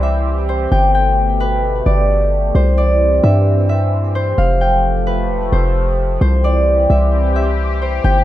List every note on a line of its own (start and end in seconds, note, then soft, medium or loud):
0.00 0.68 C2 loud
0.00 0.70 E3 medium
0.00 0.70 C4 medium
0.00 6.17 G4 medium
0.00 0.48 C5 medium
0.00 0.96 D5 medium
0.00 1.75 E5 medium
0.49 1.46 C5 medium
0.72 1.82 G1 loud
0.72 2.53 B2 medium
0.72 2.53 A3 medium
0.72 0.94 G5 medium
0.95 2.50 G5 medium
1.40 2.61 B4 medium
1.86 2.52 G1 loud
1.86 2.77 D5 medium
2.55 3.21 C2 loud
2.55 4.36 E3 medium
2.55 4.36 C4 medium
2.55 4.15 C5 medium
2.78 4.62 D5 medium
3.23 4.34 G2 loud
3.23 3.69 E5 medium
3.69 4.44 E5 medium
4.15 5.13 C5 medium
4.38 5.31 F1 loud
4.38 6.19 F3 medium
4.38 6.19 A3 medium
4.38 6.04 F5 medium
4.61 6.16 G5 medium
5.07 5.59 B4 medium
5.30 5.51 E1 loud
5.52 6.18 F1 loud
5.52 6.21 C5 medium
6.21 6.87 C2 loud
6.21 8.03 E3 medium
6.21 8.03 C4 medium
6.21 8.24 G4 medium
6.21 7.81 C5 medium
6.44 8.24 D5 medium
6.90 8.00 C2 loud
6.90 7.35 E5 medium
7.36 8.24 E5 medium
7.82 8.24 C5 medium
8.04 8.24 G1 loud
8.04 8.24 B2 medium
8.04 8.24 A3 medium
8.04 8.24 G5 medium